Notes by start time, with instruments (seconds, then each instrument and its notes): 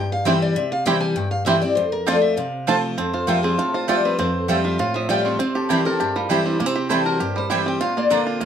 Already playing: steel-string acoustic guitar G2 G5
0.12 steel-string acoustic guitar F5
0.25 steel-string acoustic guitar E3 G3 C4 E4 E5, mandolin C4 E4 C5 G5, five-string banjo C4 E4 G4
0.42 steel-string acoustic guitar D5
0.56 steel-string acoustic guitar C3 E5
0.72 steel-string acoustic guitar F5
0.86 steel-string acoustic guitar E3 G3 C4 E4 G5, mandolin C4 E4 C5 G5, five-string banjo C4 E4 G4
1.01 steel-string acoustic guitar G#5
1.15 steel-string acoustic guitar G2 G5
1.31 steel-string acoustic guitar F5
1.45 steel-string acoustic guitar E3 G3 C4 E4 E5, mandolin C4 E4 C5 G5, five-string banjo C4 E4 G4
1.62 steel-string acoustic guitar C4 E4 D5
1.75 steel-string acoustic guitar F2 C5
1.92 steel-string acoustic guitar A#4
2.06 steel-string acoustic guitar F3 A3 C4 F4 D5, mandolin C4 F4 C5 A5, five-string banjo C4 F4
2.22 steel-string acoustic guitar E5
2.37 steel-string acoustic guitar C3 F5
2.67 steel-string acoustic guitar F3 A3 C4 F4, mandolin C4 F4 C5 A5, five-string banjo C4 F4
2.98 steel-string acoustic guitar F2, five-string banjo C4
3.13 five-string banjo F4, steel-string acoustic guitar C5
3.27 steel-string acoustic guitar F3 G3 C4 F4 A#4, mandolin A3 F4 C5 G5, five-string banjo F4
3.43 five-string banjo C4, steel-string acoustic guitar G#4
3.58 steel-string acoustic guitar A2 A4, five-string banjo F4
3.74 five-string banjo F4, steel-string acoustic guitar C5
3.88 steel-string acoustic guitar F3 G3 C4 F4 D5, mandolin A3 F4 C5 G5, five-string banjo F4
4.05 five-string banjo C4, steel-string acoustic guitar B4
4.19 steel-string acoustic guitar F2 C5, five-string banjo C4
4.48 steel-string acoustic guitar F3 G3 C4 F4, mandolin A3 F4 C5 G5, five-string banjo C4
4.64 five-string banjo F4, steel-string acoustic guitar E5
4.78 steel-string acoustic guitar A2 F5, five-string banjo F4
4.94 five-string banjo F3, steel-string acoustic guitar E5
5.09 steel-string acoustic guitar F3 G3 C4 F4 D5, mandolin A3 F4 C5 G5, five-string banjo F4
5.25 five-string banjo C4, steel-string acoustic guitar C#5
5.39 steel-string acoustic guitar C3 C5, five-string banjo C4
5.55 five-string banjo G4, steel-string acoustic guitar A4
5.69 steel-string acoustic guitar E3 G3 C4 E4 A#4, mandolin C4 E4 C5 G5, five-string banjo C4
5.85 steel-string acoustic guitar C4 E4 A4, five-string banjo A#4
6.00 steel-string acoustic guitar G2 G4, five-string banjo G4
6.16 five-string banjo G3, steel-string acoustic guitar F4
6.29 steel-string acoustic guitar E3 G3 C4 E4, mandolin C4 E4 C5 G5, five-string banjo G4
6.46 five-string banjo C4, steel-string acoustic guitar D4
6.60 steel-string acoustic guitar C3 E4, five-string banjo A#3
6.66 five-string banjo C4
6.75 steel-string acoustic guitar G4, five-string banjo G4
6.89 steel-string acoustic guitar E3 G3 C4 E4 A4, mandolin C4 E4 C5 G5, five-string banjo C4
7.06 steel-string acoustic guitar F#4, five-string banjo A#4
7.20 steel-string acoustic guitar G2 G4, five-string banjo G4
7.36 five-string banjo G3, steel-string acoustic guitar C5
7.50 steel-string acoustic guitar E3 G3 C4 E4 E5, mandolin C4 E4 C5 G5, five-string banjo G4
7.66 five-string banjo C4, steel-string acoustic guitar G5
7.81 steel-string acoustic guitar A#2 F5, five-string banjo F4
7.97 five-string banjo A#3, steel-string acoustic guitar D5
8.10 steel-string acoustic guitar D3 A#3 C4 F4, mandolin C4 F4 D5 A#5, five-string banjo D4
8.27 five-string banjo F4
8.41 steel-string acoustic guitar F2, five-string banjo A#3